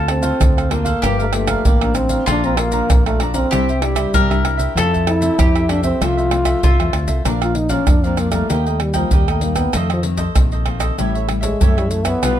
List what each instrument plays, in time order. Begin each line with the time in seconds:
Already playing: fingered electric bass D2, nylon-string guitar D3 A3 C4 F4, mandolin A4
0.08 trombone C4, muted cavaquinho stroke, pandeiro, tamborim
0.22 nylon-string guitar A3 C4 F4, cavaquinho A4 C5 F5, pandeiro, maracas
0.40 fingered electric bass D2, nylon-string guitar A2, pandeiro, tamborim, maracas, surdo
0.57 cavaquinho A4 C5 F5, pandeiro, tamborim, maracas
0.70 nylon-string guitar A3 C4 F4, trombone A#3, cavaquinho D4 A4 C5 F5, pandeiro, tamborim
0.85 cavaquinho A4 C5 F5, pandeiro, maracas, surdo
1.02 fingered electric bass G1, nylon-string guitar G2 F3 A#3 D4, mandolin G4, cavaquinho G4 A#4 D5 F5, pandeiro, tamborim, maracas, surdo
1.19 trombone A3, cavaquinho A#4 D5 F5, pandeiro, maracas
1.33 nylon-string guitar F3 A#3 D4, trombone A3, pandeiro, tamborim
1.48 cavaquinho A#4 D5 F5, pandeiro, tamborim, maracas, surdo
1.65 fingered electric bass A1, nylon-string guitar D3, trombone A#3, cavaquinho G4 A#4 D5 F5, pandeiro, maracas, surdo
1.81 nylon-string guitar F3 A#3 D4, cavaquinho A#4 D5 F5, pandeiro, tamborim, maracas
1.95 trombone C4, pandeiro, tamborim, maracas
2.09 cavaquinho A#4 D5 F5, pandeiro, maracas, surdo
2.26 fingered electric bass A#1, nylon-string guitar A#2 F3 A3 D4, trombone D4, mandolin F4, cavaquinho A4 D5 F5, pandeiro, tamborim, maracas, surdo
2.31 cavaquinho A#5
2.44 trombone C4, cavaquinho D5 F5 A#5, pandeiro, maracas, surdo
2.57 trombone A#3, pandeiro, tamborim
2.71 nylon-string guitar F3 D4, cavaquinho D5 F5 A#5, pandeiro, maracas
2.89 fingered electric bass A#1, nylon-string guitar F2, pandeiro, tamborim, maracas, surdo
3.06 trombone A3, cavaquinho D5 F5 A#5, pandeiro, tamborim, maracas
3.19 nylon-string guitar F3 A3 D4, cavaquinho A4 D5 F5 A#5, pandeiro, tamborim
3.34 trombone C4, cavaquinho D5 F5 A#5, pandeiro, maracas, surdo
3.51 fingered electric bass C2, nylon-string guitar C3 G3 D4 E4, cavaquinho D4 G4 C5 E5, mandolin G4, pandeiro, tamborim, maracas, surdo
3.69 cavaquinho G4 C5 E5, pandeiro, maracas
3.81 nylon-string guitar G3 D4 E4, trombone G3, muted cavaquinho stroke, pandeiro, tamborim
3.95 cavaquinho G4 C5 E5, pandeiro, tamborim, maracas, surdo
4.14 fingered electric bass C2, nylon-string guitar G3, cavaquinho D4 G4 C5 E5, mandolin A#4, pandeiro, maracas, surdo
4.30 nylon-string guitar G3 D4 E4, cavaquinho G4 C5 E5, pandeiro, tamborim, maracas
4.45 pandeiro, tamborim, surdo
4.57 cavaquinho G4 C5 E5, pandeiro, maracas, surdo
4.75 fingered electric bass F2, nylon-string guitar F3 A3 C4 E4, cavaquinho F4 A4 C5 E5, mandolin A4, pandeiro, tamborim, maracas, surdo
4.92 cavaquinho A4 C5 E5, pandeiro, maracas, surdo
5.07 trombone E4, muted cavaquinho stroke, pandeiro, tamborim
5.21 nylon-string guitar A3 C4 E4, cavaquinho A4 C5 E5, pandeiro, maracas
5.38 fingered electric bass F2, nylon-string guitar C3, mandolin G4, pandeiro, tamborim, maracas, surdo
5.55 cavaquinho A4 C5 E5, pandeiro, tamborim, maracas
5.69 nylon-string guitar A3 C4 E4, trombone D4, cavaquinho F4 A4 C5 E5, pandeiro, tamborim
5.83 trombone C4, cavaquinho A4 C5 E5, pandeiro, maracas, surdo
6.01 fingered electric bass C2, nylon-string guitar F3 A3 C4 E4, cavaquinho F4 A4 C5 E5, trombone F4, pandeiro, tamborim, maracas, surdo
6.17 cavaquinho A4 C5 E5, pandeiro, maracas
6.31 nylon-string guitar A3 C4 E4, muted cavaquinho stroke, pandeiro, tamborim
6.45 cavaquinho A4 C5 E5, pandeiro, tamborim, maracas, surdo
6.63 fingered electric bass C2, nylon-string guitar C3, cavaquinho F4 A4 C5 E5, mandolin F4, pandeiro, maracas, surdo
6.79 fingered electric bass E2, nylon-string guitar A3 C4, cavaquinho A4 C5 E5, pandeiro, tamborim, maracas
6.93 fingered electric bass D2, pandeiro, tamborim
7.07 fingered electric bass C2, cavaquinho A4 C5 E5, pandeiro, maracas, surdo
7.25 fingered electric bass A#1, nylon-string guitar A#2 F3 A#3 D4, cavaquinho D4 A#4 D5 F5, pandeiro, tamborim, maracas, surdo
7.41 trombone F4, cavaquinho A#4 D5 F5, pandeiro, tamborim, maracas
7.55 trombone D#4, muted cavaquinho stroke, pandeiro
7.69 nylon-string guitar F3 A#3 D4, trombone C#4, cavaquinho A#4 D5 F5, pandeiro, maracas, surdo
7.87 fingered electric bass F2, nylon-string guitar F3, trombone D4, pandeiro, tamborim, maracas, surdo
8.03 nylon-string guitar F3 A#3 D4, trombone C4, cavaquinho A#4 D5 F5, pandeiro, maracas
8.17 trombone A#3, cavaquinho D4 A#4 D5 F5, pandeiro, tamborim, maracas, surdo
8.31 nylon-string guitar G3 A#3 D#4, trombone A3, cavaquinho A#4 D5 F5, pandeiro, tamborim, maracas, surdo
8.49 fingered electric bass D#2, nylon-string guitar D#3, trombone A#3, cavaquinho G4 A#4 D#5 G5, pandeiro, maracas, surdo
8.66 trombone A3, cavaquinho A#4 D#5 G5, pandeiro, maracas
8.79 trombone G3, muted cavaquinho stroke, pandeiro, tamborim
8.94 trombone F3, nylon-string guitar G3 A#3 D#4, cavaquinho A#4 D#5 G5, pandeiro, maracas, surdo
9.11 fingered electric bass D#2, nylon-string guitar A#2, trombone G3, cavaquinho G4 A#4 D#5 G5, pandeiro, maracas, surdo
9.28 trombone A3, cavaquinho A#4 D#5 G5, pandeiro, tamborim, maracas
9.41 nylon-string guitar G3 A#3 D#4, trombone A#3, pandeiro
9.56 trombone B3, cavaquinho A#4 D#5 G5, pandeiro, tamborim, maracas, surdo
9.73 fingered electric bass F2, nylon-string guitar F2 D#3 A3 C4, trombone A3, cavaquinho F4 A4 C5 D#5, pandeiro, tamborim, maracas, surdo
9.90 trombone F3, cavaquinho A4 C5 D#5, pandeiro, tamborim, maracas
10.03 nylon-string guitar D#3 A3 C4, muted cavaquinho stroke, pandeiro
10.17 cavaquinho A4 C5 D#5, pandeiro, maracas, surdo
10.36 fingered electric bass A#1, nylon-string guitar C3 D#3 A3 C4, pandeiro, tamborim, maracas, surdo
10.52 cavaquinho A4 C5 D#5, pandeiro, maracas
10.65 nylon-string guitar D#3 A3 C4, cavaquinho F4 A4 C5 D#5, pandeiro, tamborim, surdo
10.80 cavaquinho A4 C5 D#5, pandeiro, tamborim, maracas, surdo
10.98 fingered electric bass A1, nylon-string guitar A2 G3 C#4 E4, cavaquinho G4 A4 C#5 E5, pandeiro, maracas, surdo
11.14 cavaquinho A4 C#5 E5, pandeiro, maracas
11.28 nylon-string guitar G3 C#4 E4, muted cavaquinho stroke, pandeiro, tamborim
11.41 trombone G#3, cavaquinho A4 C#5 E5, pandeiro, maracas, surdo
11.60 fingered electric bass F#2, nylon-string guitar E3 G3 C#4 E4, trombone A3, cavaquinho G4 A4 C#5 E5, pandeiro, maracas, surdo
11.77 trombone G3, nylon-string guitar C#4 E4, cavaquinho A4 C#5 E5, pandeiro, tamborim, maracas
11.90 trombone A3, pandeiro, maracas
12.05 trombone B3, cavaquinho A4 C#5 E5, pandeiro, tamborim, maracas, surdo
12.23 fingered electric bass B1, nylon-string guitar B2 G3 D4 F4, cavaquinho F4 G4 B4 D5, pandeiro, tamborim, maracas, surdo